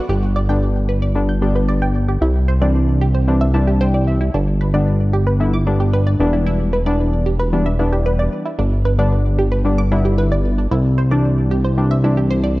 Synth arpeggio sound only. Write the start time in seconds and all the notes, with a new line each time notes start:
0.09 G4
0.36 D5
0.49 G5
0.89 B4
1.02 D5
1.29 G6
1.42 G4
1.55 B4
1.68 D5
1.82 G5
2.08 G4
2.22 E4
2.48 C5
2.61 D5
3.01 G4
3.14 C5
3.41 E5
3.54 E4
3.67 G4
3.81 C5
3.94 D5
4.21 E4
4.34 D4
4.61 B4
4.74 D5
5.14 G4
5.27 B4
5.54 D6
5.67 D4
5.80 G4
5.93 B4
6.07 D5
6.33 E4
6.47 E4
6.73 B4
6.86 D5
7.26 G4
7.39 B4
7.66 E5
7.79 E4
7.92 G4
8.06 B4
8.19 D5
8.46 E4
8.59 D4
8.85 B4
8.99 D5
9.39 G4
9.52 B4
9.78 D6
9.92 D4
10.05 G4
10.18 B4
10.31 D5
10.58 D4
10.71 E4
10.98 C5
11.11 D5
11.51 G4
11.64 C5
11.91 E5
12.04 E4
12.17 G4
12.31 C5
12.44 D5